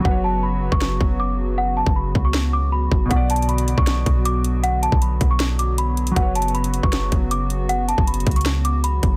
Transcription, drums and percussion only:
0.05 kick loud
0.72 kick medium
0.81 snare loud
1.01 kick loud
1.86 kick loud
2.15 kick loud
2.34 snare loud
2.92 kick medium
3.11 kick loud
3.11 closed hi-hat medium
3.30 closed hi-hat medium
3.36 closed hi-hat medium
3.42 closed hi-hat soft
3.49 closed hi-hat soft
3.58 closed hi-hat medium
3.68 closed hi-hat medium
3.78 kick medium
3.87 snare loud
3.87 closed hi-hat medium
4.06 kick loud
4.06 closed hi-hat medium
4.25 closed hi-hat loud
4.44 closed hi-hat medium
4.64 closed hi-hat medium
4.83 closed hi-hat medium
4.92 kick loud
5.02 closed hi-hat medium
5.21 kick loud
5.21 closed hi-hat medium
5.40 snare loud
5.40 closed hi-hat medium
5.59 closed hi-hat medium
5.78 closed hi-hat loud
5.97 closed hi-hat soft
5.97 open hi-hat medium
6.07 closed hi-hat medium
6.16 kick loud
6.16 closed hi-hat medium
6.35 closed hi-hat medium
6.42 closed hi-hat medium
6.48 closed hi-hat soft
6.55 closed hi-hat soft
6.64 closed hi-hat medium
6.74 closed hi-hat medium
6.83 kick medium
6.93 snare loud
6.93 closed hi-hat medium
7.12 kick medium
7.12 closed hi-hat medium
7.31 closed hi-hat loud
7.50 closed hi-hat medium
7.69 closed hi-hat medium
7.89 closed hi-hat medium
7.98 kick loud
8.07 closed hi-hat medium
8.14 closed hi-hat medium
8.20 closed hi-hat soft
8.27 kick medium
8.27 closed hi-hat soft
8.31 closed hi-hat medium
8.36 closed hi-hat medium
8.41 closed hi-hat medium
8.46 snare loud
8.46 closed hi-hat medium
8.65 closed hi-hat medium
8.84 closed hi-hat loud
9.03 kick loud
9.03 closed hi-hat medium

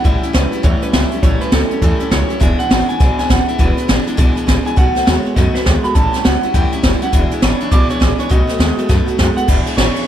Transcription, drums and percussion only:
0.05 kick loud
0.05 closed hi-hat medium
0.23 closed hi-hat medium
0.34 snare loud
0.34 closed hi-hat medium
0.53 closed hi-hat medium
0.64 kick loud
0.64 closed hi-hat medium
0.82 closed hi-hat medium
0.93 kick medium
0.93 snare loud
0.93 closed hi-hat medium
1.12 closed hi-hat medium
1.23 kick loud
1.23 closed hi-hat medium
1.41 closed hi-hat medium
1.52 snare loud
1.52 closed hi-hat medium
1.71 closed hi-hat medium
1.82 kick loud
1.82 closed hi-hat medium
2.00 closed hi-hat medium
2.11 kick medium
2.11 snare loud
2.11 closed hi-hat medium
2.30 closed hi-hat medium
2.41 kick loud
2.41 closed hi-hat medium
2.60 closed hi-hat medium
2.71 snare loud
2.71 closed hi-hat medium
2.89 closed hi-hat medium
3.00 kick loud
3.00 snare soft
3.00 closed hi-hat medium
3.19 snare soft
3.19 closed hi-hat medium
3.30 kick medium
3.30 snare loud
3.30 closed hi-hat medium
3.49 closed hi-hat medium
3.59 kick loud
3.59 closed hi-hat medium
3.78 closed hi-hat medium
3.89 snare loud
3.89 closed hi-hat medium
4.07 closed hi-hat medium
4.18 kick loud
4.18 closed hi-hat medium
4.37 closed hi-hat medium
4.48 kick medium
4.48 snare loud
4.48 closed hi-hat medium
4.67 closed hi-hat medium
4.77 kick loud
4.77 closed hi-hat medium
4.96 snare soft
4.96 closed hi-hat medium
5.07 snare loud
5.07 closed hi-hat medium
5.26 closed hi-hat soft
5.37 kick loud
5.37 snare soft
5.37 closed hi-hat medium
5.55 snare soft
5.55 closed hi-hat medium
5.66 kick medium
5.66 snare loud
5.66 closed hi-hat medium
5.84 closed hi-hat medium
5.95 kick loud
5.95 closed hi-hat medium
6.14 snare soft
6.14 closed hi-hat medium
6.25 snare loud
6.25 closed hi-hat medium
6.43 closed hi-hat medium
6.54 kick loud
6.54 closed hi-hat medium
6.72 closed hi-hat medium
6.83 kick medium
6.83 snare loud
6.83 closed hi-hat medium
7.02 closed hi-hat medium
7.13 kick loud
7.13 closed hi-hat medium
7.31 closed hi-hat medium
7.42 snare loud
7.42 closed hi-hat medium
7.60 closed hi-hat medium
7.71 kick loud
7.71 closed hi-hat medium
7.90 closed hi-hat medium
8.01 kick medium
8.01 snare loud
8.01 closed hi-hat medium
8.20 closed hi-hat medium
8.31 kick loud
8.31 closed hi-hat medium
8.49 snare soft
8.49 closed hi-hat medium
8.60 snare loud
8.60 closed hi-hat medium
8.78 closed hi-hat medium
8.89 kick loud
8.89 snare soft
8.89 closed hi-hat medium
9.08 closed hi-hat medium
9.19 kick medium
9.19 snare loud
9.19 closed hi-hat medium
9.37 closed hi-hat medium
9.48 kick loud
9.48 crash loud
9.67 ride medium
9.78 snare loud
9.78 ride medium
9.96 ride medium

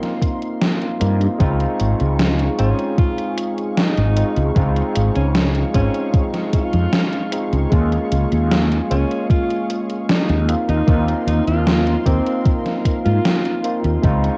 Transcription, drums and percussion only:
0.03 snare soft
0.03 closed hi-hat soft
0.22 kick medium
0.22 closed hi-hat medium
0.42 closed hi-hat soft
0.62 snare loud
0.62 closed hi-hat medium
0.82 closed hi-hat soft
1.01 closed hi-hat medium
1.21 closed hi-hat soft
1.40 kick loud
1.40 closed hi-hat medium
1.60 closed hi-hat soft
1.80 closed hi-hat loud
2.00 closed hi-hat soft
2.19 snare loud
2.19 closed hi-hat medium
2.39 closed hi-hat soft
2.59 closed hi-hat loud
2.79 closed hi-hat soft
2.98 kick loud
2.98 closed hi-hat medium
3.18 closed hi-hat soft
3.38 closed hi-hat medium
3.58 closed hi-hat soft
3.77 snare loud
3.77 closed hi-hat medium
3.97 closed hi-hat soft
4.17 closed hi-hat medium
4.36 closed hi-hat soft
4.56 kick loud
4.56 closed hi-hat medium
4.76 closed hi-hat soft
4.95 closed hi-hat loud
5.15 closed hi-hat soft
5.35 snare loud
5.35 closed hi-hat medium
5.55 closed hi-hat soft
5.74 kick medium
5.74 closed hi-hat loud
5.94 closed hi-hat soft
6.14 kick loud
6.14 closed hi-hat medium
6.34 snare soft
6.34 closed hi-hat soft
6.53 kick medium
6.53 closed hi-hat loud
6.73 closed hi-hat soft
6.93 snare loud
6.93 closed hi-hat medium
7.13 closed hi-hat soft
7.32 closed hi-hat loud
7.53 closed hi-hat soft
7.72 kick loud
7.72 closed hi-hat medium
7.92 closed hi-hat soft
8.12 closed hi-hat loud
8.32 closed hi-hat soft
8.52 snare loud
8.52 closed hi-hat medium
8.72 closed hi-hat soft
8.91 closed hi-hat loud
9.11 closed hi-hat soft
9.30 kick loud
9.30 closed hi-hat medium
9.50 closed hi-hat soft
9.70 closed hi-hat loud
9.90 closed hi-hat soft
10.09 snare loud
10.09 closed hi-hat medium
10.29 closed hi-hat soft
10.49 closed hi-hat medium
10.69 closed hi-hat soft
10.88 kick loud
10.88 closed hi-hat medium
11.08 closed hi-hat soft
11.28 closed hi-hat loud
11.48 closed hi-hat soft
11.67 snare loud
11.67 closed hi-hat medium
11.87 closed hi-hat soft
12.06 kick medium
12.06 closed hi-hat medium
12.27 closed hi-hat soft
12.46 kick loud
12.46 closed hi-hat medium
12.66 snare soft
12.66 closed hi-hat soft
12.85 kick medium
12.85 closed hi-hat medium
13.05 closed hi-hat soft
13.25 snare loud
13.25 closed hi-hat medium
13.45 closed hi-hat soft
13.64 closed hi-hat medium
13.84 closed hi-hat soft
14.03 kick loud
14.03 closed hi-hat medium
14.24 closed hi-hat soft

